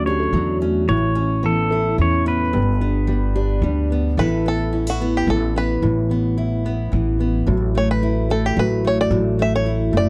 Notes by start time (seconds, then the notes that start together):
Already playing: D2 D3 F#3 A3 C#4
0.06 D4 G4 C#5
0.19 A4
0.33 E2 F#3
0.61 A3 C#4
0.88 A1 A2 E3 C#5
1.15 C#4
1.43 E3 B3 A4
1.71 E4 A4
1.98 E2 E3 C#4 C#5
2.26 B3 C#4 B4
2.53 G1 G2 B3
2.81 B3 D4
3.07 G3 B3
3.35 D4 G4
3.62 D2 G3 D4
3.90 B3
4.17 A1 A2 E3 B3 E4 A4 B4
4.46 B3 A4
4.73 C#4 E4
4.87 E4 F#4
5.00 B3
5.17 G4
5.27 A1 E3 A4
5.54 B3 B4
5.82 A1 A2 E3
6.09 B3
6.37 E4
6.65 B3
6.92 A1 E3
7.19 B3
7.47 A1 A2 F#3
7.74 A3 C#5
7.91 B4
8.02 E4
8.29 A3 A4
8.46 G4
8.56 A1 F#3 B4
8.83 A3
8.87 C#5
9.01 D5
9.11 A1 A2 F#3
9.38 A3
9.42 E5
9.56 C#5
9.64 E4
9.91 F#1 A3
9.97 D5